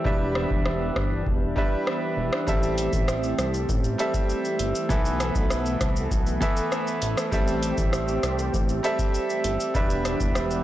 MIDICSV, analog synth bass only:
0, 0, Header, 1, 2, 480
1, 0, Start_track
1, 0, Key_signature, 0, "minor"
1, 0, Tempo, 606061
1, 40, Time_signature, 4, 2, 24, 8
1, 8423, End_track
2, 0, Start_track
2, 0, Title_t, "Analog synth bass"
2, 0, Program_c, 0, 38
2, 41, Note_on_c, 0, 28, 113
2, 370, Note_off_c, 0, 28, 0
2, 401, Note_on_c, 0, 28, 96
2, 730, Note_off_c, 0, 28, 0
2, 760, Note_on_c, 0, 31, 91
2, 980, Note_off_c, 0, 31, 0
2, 1002, Note_on_c, 0, 28, 108
2, 1221, Note_off_c, 0, 28, 0
2, 1720, Note_on_c, 0, 28, 86
2, 1830, Note_off_c, 0, 28, 0
2, 1961, Note_on_c, 0, 33, 112
2, 2290, Note_off_c, 0, 33, 0
2, 2321, Note_on_c, 0, 33, 92
2, 2650, Note_off_c, 0, 33, 0
2, 2681, Note_on_c, 0, 36, 86
2, 2900, Note_off_c, 0, 36, 0
2, 2922, Note_on_c, 0, 33, 121
2, 3141, Note_off_c, 0, 33, 0
2, 3641, Note_on_c, 0, 31, 95
2, 3751, Note_off_c, 0, 31, 0
2, 3881, Note_on_c, 0, 35, 111
2, 4210, Note_off_c, 0, 35, 0
2, 4241, Note_on_c, 0, 35, 105
2, 4570, Note_off_c, 0, 35, 0
2, 4600, Note_on_c, 0, 36, 89
2, 4819, Note_off_c, 0, 36, 0
2, 4842, Note_on_c, 0, 35, 104
2, 5060, Note_off_c, 0, 35, 0
2, 5561, Note_on_c, 0, 33, 90
2, 5670, Note_off_c, 0, 33, 0
2, 5801, Note_on_c, 0, 33, 116
2, 6130, Note_off_c, 0, 33, 0
2, 6161, Note_on_c, 0, 33, 100
2, 6490, Note_off_c, 0, 33, 0
2, 6521, Note_on_c, 0, 36, 97
2, 6740, Note_off_c, 0, 36, 0
2, 6762, Note_on_c, 0, 33, 104
2, 6981, Note_off_c, 0, 33, 0
2, 7481, Note_on_c, 0, 31, 90
2, 7590, Note_off_c, 0, 31, 0
2, 7721, Note_on_c, 0, 28, 108
2, 8050, Note_off_c, 0, 28, 0
2, 8081, Note_on_c, 0, 28, 100
2, 8410, Note_off_c, 0, 28, 0
2, 8423, End_track
0, 0, End_of_file